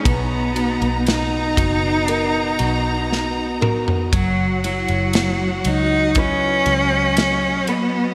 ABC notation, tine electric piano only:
X:1
M:4/4
L:1/8
Q:1/4=59
K:B
V:1 name="Tine electric piano" clef=bass
B, F B, F B, F B, F | F, F, F, F, F, F, F, F, |]